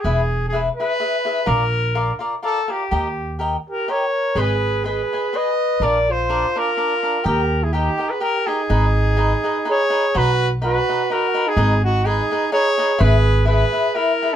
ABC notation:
X:1
M:3/4
L:1/16
Q:"Swing" 1/4=125
K:G#m
V:1 name="Cavaquinho"
[EGBe]2 z2 [EGBe]2 [EGBe]2 [EGBe]2 [EGBe]2 | [^EA=d^e]2 z2 [EAde]2 [EAde]2 [EAde]2 [EAde]2 | [=GAd=g]2 z2 [GAdg]2 z2 [GAdg]2 z2 | [GBdg]2 z2 [GBdg]2 [GBdg]2 [GBdg]2 z2 |
[=DA=d^e]2 z2 [DAde]2 [DAde]2 [DAde]2 [DAde]2 | [=GAd=g]2 z2 [GAdg]2 [GAdg]2 [GAdg]2 [GAdg]2 | [DGBd]2 z2 [DGBd]2 [DGBd]2 [DGBd]2 [DGBd]2 | [K:B] [DBdf]2 z2 [DBdf]2 [DBdf]2 [DBdf]2 [DBdf]2 |
[DGBd]2 z2 [DGBd]2 [DGBd]2 [DGBd]2 [DGBd]2 | [EGBe]2 z2 [EGBe]2 [EGBe]2 [EGBe]2 [EGBe]2 |]
V:2 name="Trumpet"
G4 G2 B6 | A6 z2 =A2 =G2- | =G4 z2 A2 c4 | B4 B4 d4 |
=d2 ^B4 A6 | A3 G =G3 B A2 ^G2- | G8 c4 | [K:B] B4 B4 A3 G- |
G2 F2 G4 c4 | B4 B4 A3 z |]
V:3 name="Flugelhorn"
z12 | z12 | z6 =G2 A4 | G4 G4 B4 |
A2 ^E4 E6 | =G3 E D3 ^G =G2 D2- | D8 G4 | [K:B] F4 F4 F3 D- |
D2 D2 D4 G4 | G4 G4 E3 C |]
V:4 name="Upright bass" clef=bass
E,,,8 z4 | A,,,8 z4 | D,,8 z4 | G,,,8 z4 |
A,,,8 z4 | D,,8 z4 | G,,,8 z4 | [K:B] B,,,8 z4 |
G,,,8 z4 | G,,,8 z4 |]